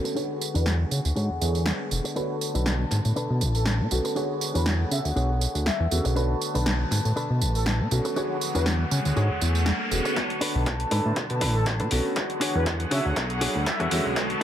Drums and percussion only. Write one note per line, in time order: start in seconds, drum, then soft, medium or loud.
0.05 tambourine soft
0.16 tambourine soft
0.41 tambourine medium
0.55 tambourine soft
0.66 snare loud
0.66 tambourine soft
0.91 tambourine medium
1.05 tambourine soft
1.16 tambourine soft
1.42 tambourine medium
1.55 tambourine soft
1.66 snare loud
1.66 tambourine soft
1.91 tambourine medium
2.05 tambourine soft
2.16 tambourine soft
2.41 tambourine medium
2.55 tambourine soft
2.66 snare loud
2.66 tambourine soft
2.91 snare soft
2.91 tambourine medium
3.05 tambourine soft
3.16 tambourine soft
3.41 tambourine medium
3.55 tambourine soft
3.66 snare loud
3.66 tambourine soft
3.91 tambourine medium
4.05 tambourine soft
4.16 tambourine soft
4.41 tambourine medium
4.55 tambourine soft
4.66 snare loud
4.66 tambourine soft
4.91 tambourine medium
5.05 tambourine soft
5.17 tambourine soft
5.41 tambourine medium
5.55 tambourine soft
5.66 snare loud
5.66 tambourine soft
5.91 tambourine medium
6.05 tambourine soft
6.16 tambourine soft
6.41 tambourine medium
6.55 tambourine soft
6.66 snare loud
6.66 tambourine soft
6.91 snare soft
6.91 tambourine medium
7.05 tambourine soft
7.17 tambourine soft
7.41 tambourine medium
7.55 tambourine soft
7.66 snare loud
7.66 tambourine soft
7.91 tambourine medium
8.05 tambourine soft
8.16 tambourine soft
8.41 tambourine medium
8.55 tambourine soft
8.66 snare loud
8.66 tambourine soft
8.91 tambourine medium
9.05 tambourine soft
9.17 tambourine soft
9.41 tambourine medium
9.55 tambourine soft
9.66 snare loud
9.66 tambourine soft
9.91 tambourine medium
10.05 tambourine soft
10.16 kick loud
10.16 snare soft
10.16 closed hi-hat medium
10.30 closed hi-hat medium
10.41 open hi-hat loud
10.66 kick loud
10.66 snare soft
10.66 closed hi-hat medium
10.80 closed hi-hat medium
10.91 open hi-hat loud
11.16 kick loud
11.16 snare medium
11.16 closed hi-hat medium
11.30 closed hi-hat medium
11.41 open hi-hat loud
11.66 kick loud
11.66 snare medium
11.66 closed hi-hat medium
11.80 closed hi-hat medium
11.91 open hi-hat loud
12.16 kick loud
12.16 snare medium
12.16 closed hi-hat medium
12.30 closed hi-hat soft
12.41 open hi-hat loud
12.66 kick loud
12.66 snare medium
12.66 closed hi-hat medium
12.80 closed hi-hat medium
12.91 open hi-hat loud
13.16 kick loud
13.16 snare medium
13.16 closed hi-hat medium
13.30 closed hi-hat medium
13.41 open hi-hat loud
13.66 kick loud
13.66 snare medium
13.66 closed hi-hat medium
13.80 closed hi-hat medium
13.91 open hi-hat loud
14.16 kick loud
14.16 snare medium
14.16 closed hi-hat medium
14.30 closed hi-hat medium